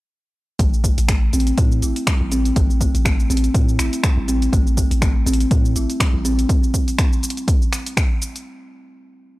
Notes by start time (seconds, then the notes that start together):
0.59 A1 A3, kick, closed hi-hat, shaker
0.74 shaker
0.84 A3, kick, closed hi-hat, shaker
0.98 A1, closed hi-hat, shaker
1.08 A3, finger snap, kick, closed hi-hat, shaker
1.33 A1 C4, closed hi-hat, shaker
1.40 closed hi-hat
1.47 closed hi-hat, shaker
1.58 A2 A3, kick, closed hi-hat, shaker
1.72 shaker
1.82 A1 E4, closed hi-hat, shaker
1.96 closed hi-hat, shaker
2.07 G3, finger snap, kick, closed hi-hat, shaker
2.21 A1
2.32 C4, closed hi-hat, shaker
2.45 closed hi-hat, shaker
2.56 A1 A3, kick, closed hi-hat, shaker
2.70 shaker
2.81 A3, kick, closed hi-hat, shaker
2.95 A1, closed hi-hat, shaker
3.05 A3, finger snap, kick, closed hi-hat, shaker
3.20 shaker
3.30 A1 C4, closed hi-hat, shaker
3.37 closed hi-hat
3.44 closed hi-hat, shaker
3.54 A2 A3, kick, closed hi-hat, shaker
3.69 shaker
3.79 A1 E4, finger snap, closed hi-hat, shaker
3.93 closed hi-hat, shaker
4.03 G3, finger snap, kick, closed hi-hat, shaker
4.17 A1
4.28 C4, closed hi-hat, shaker
4.42 closed hi-hat, shaker
4.53 A1 A3, kick, closed hi-hat, shaker
4.67 shaker
4.77 A3, kick, closed hi-hat, shaker
4.91 A1, closed hi-hat, shaker
5.02 A3, finger snap, kick, closed hi-hat, shaker
5.26 A1 C4, closed hi-hat, shaker
5.33 closed hi-hat
5.40 closed hi-hat, shaker
5.51 A2 A3, kick, closed hi-hat, shaker
5.65 shaker
5.76 A1 E4, closed hi-hat, shaker
5.90 closed hi-hat, shaker
6.00 G3, finger snap, kick, closed hi-hat, shaker
6.14 A1
6.25 C4, closed hi-hat, shaker
6.39 closed hi-hat, shaker
6.49 kick, closed hi-hat, shaker
6.64 shaker
6.74 kick, closed hi-hat, shaker
6.88 closed hi-hat, shaker
6.99 finger snap, kick, closed hi-hat, shaker
7.13 shaker
7.23 closed hi-hat, shaker
7.30 closed hi-hat
7.37 closed hi-hat, shaker
7.48 kick, closed hi-hat, shaker
7.62 shaker
7.73 finger snap, closed hi-hat, shaker
7.86 closed hi-hat, shaker
7.97 finger snap, kick, closed hi-hat, shaker
8.22 closed hi-hat, shaker
8.36 closed hi-hat, shaker